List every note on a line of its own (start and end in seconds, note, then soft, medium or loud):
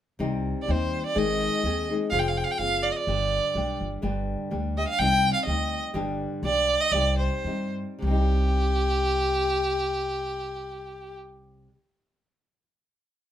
0.19 0.51 C2 medium
0.19 0.67 C3 medium
0.19 0.66 G3 medium
0.19 0.67 C4 medium
0.19 0.67 D#4 medium
0.19 0.68 G4 medium
0.62 0.73 D5 medium
0.67 0.99 D#2 medium
0.67 1.15 G3 soft
0.67 1.14 C4 soft
0.67 1.14 D#4 medium
0.67 1.15 G4 medium
0.71 1.06 C5 medium
1.06 1.20 D5 medium
1.15 1.47 G#1 medium
1.15 1.63 G#2 medium
1.15 1.63 D#3 medium
1.15 1.63 G#3 medium
1.15 1.63 C4 medium
1.15 1.63 D#4 medium
1.15 1.63 G#4 medium
1.15 1.90 D#5 medium
1.63 1.94 D#2 medium
1.63 1.89 G#3 soft
1.63 1.89 C4 soft
1.63 1.89 D#4 soft
1.63 1.88 G#4 medium
1.90 2.11 G#3 soft
1.90 2.11 C4 soft
1.90 2.12 D#4 soft
1.90 2.11 G#4 soft
2.10 2.42 F1 medium
2.10 2.58 F3 medium
2.10 2.58 C4 medium
2.10 2.59 F4 medium
2.10 2.59 G#4 medium
2.10 2.20 F5 medium
2.19 2.30 G5 medium
2.28 2.39 F5 medium
2.37 2.46 G5 medium
2.44 2.53 F5 medium
2.51 2.59 G5 medium
2.58 2.90 F#1 medium
2.58 3.07 F3 soft
2.58 3.07 C4 soft
2.58 3.07 F4 soft
2.58 3.08 G#4 soft
2.58 2.84 F5 medium
2.83 2.94 D5 medium
2.92 2.99 D#5 medium
2.97 3.81 D5 medium
3.07 3.38 G1 medium
3.07 3.55 G2 medium
3.07 3.55 D3 medium
3.07 3.55 G3 medium
3.07 3.55 B3 medium
3.07 3.56 D4 medium
3.07 3.56 G4 medium
3.55 3.78 B1 medium
3.55 4.02 G3 medium
3.55 4.01 B3 soft
3.55 4.02 D4 soft
3.55 4.03 G4 medium
3.81 4.01 G1 medium
4.02 4.35 G1 medium
4.02 4.51 G2 medium
4.02 4.51 D3 medium
4.02 4.50 G3 medium
4.02 4.50 B3 medium
4.02 4.50 D4 medium
4.02 4.52 G4 medium
4.51 4.83 D2 medium
4.51 4.77 G3 medium
4.51 4.77 B3 soft
4.51 4.76 D4 medium
4.51 4.76 G4 medium
4.77 5.00 G3 soft
4.77 5.00 B3 soft
4.77 5.00 D4 soft
4.77 5.00 G4 soft
4.77 4.87 D#5 medium
4.88 5.00 F5 medium
4.99 5.30 C2 medium
4.99 5.48 C3 medium
4.99 5.47 G3 medium
4.99 5.47 C4 medium
4.99 5.47 D#4 medium
4.99 5.48 G4 medium
4.99 5.33 G5 loud
5.34 5.45 F5 medium
5.45 5.78 D2 medium
5.45 5.94 G3 soft
5.45 5.94 C4 soft
5.45 5.95 D#4 medium
5.45 5.95 G4 medium
5.45 5.80 D#5 medium
5.94 6.26 G1 medium
5.94 6.42 G2 medium
5.94 6.42 D3 medium
5.94 6.43 G3 medium
5.94 6.43 B3 medium
5.94 6.43 D4 medium
5.94 6.45 G4 medium
6.43 6.75 B1 medium
6.43 6.92 G3 soft
6.43 6.93 B3 medium
6.43 6.93 D4 medium
6.43 6.94 G4 medium
6.43 6.82 D5 medium
6.81 6.94 D#5 medium
6.92 7.26 C2 medium
6.92 7.46 C3 medium
6.92 7.45 G3 medium
6.92 7.46 C4 medium
6.92 7.46 D#4 medium
6.92 7.47 G4 medium
6.92 7.19 D5 medium
7.19 7.71 C5 medium
7.44 7.82 G2 medium
7.44 8.03 G3 soft
7.44 8.07 C4 soft
7.44 8.10 D#4 medium
7.44 8.13 G4 soft
7.99 11.67 C2 medium
7.99 11.67 C3 medium
8.03 11.72 G3 medium
8.03 11.75 C4 medium
8.03 11.15 G4 medium
8.10 11.79 D#4 medium
8.10 11.82 G4 medium